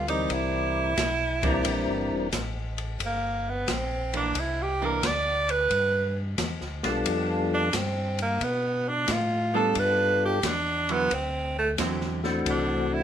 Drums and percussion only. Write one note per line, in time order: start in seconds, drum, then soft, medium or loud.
0.08 ride soft
0.30 kick soft
0.30 ride medium
0.98 kick soft
0.98 snare medium
0.98 hi-hat pedal medium
0.98 ride medium
1.43 kick medium
1.43 ride soft
1.65 kick soft
1.65 ride medium
2.32 kick soft
2.32 snare medium
2.32 hi-hat pedal medium
2.32 ride medium
2.78 ride soft
3.00 kick soft
3.00 ride medium
3.68 kick soft
3.68 snare medium
3.68 hi-hat pedal medium
3.68 ride medium
4.13 ride soft
4.35 kick soft
4.35 ride medium
5.03 kick soft
5.03 snare medium
5.03 hi-hat pedal soft
5.03 ride medium
5.49 ride soft
5.71 kick soft
5.71 ride medium
6.38 kick soft
6.38 snare medium
6.38 hi-hat pedal medium
6.38 ride medium
6.61 snare soft
6.83 snare medium
6.83 ride soft
7.06 kick soft
7.06 ride medium
7.73 kick soft
7.73 snare medium
7.73 hi-hat pedal medium
7.73 ride medium
8.19 ride soft
8.41 kick soft
8.41 ride medium
9.08 kick soft
9.08 snare medium
9.08 hi-hat pedal medium
9.08 ride medium
9.75 kick soft
9.75 ride medium
10.43 kick soft
10.43 snare medium
10.43 hi-hat pedal soft
10.43 ride medium
10.89 ride soft
11.11 kick soft
11.11 ride medium
11.78 kick soft
11.78 snare medium
11.78 hi-hat pedal medium
11.78 ride medium
12.01 snare soft
12.24 snare soft
12.46 kick soft
12.46 ride medium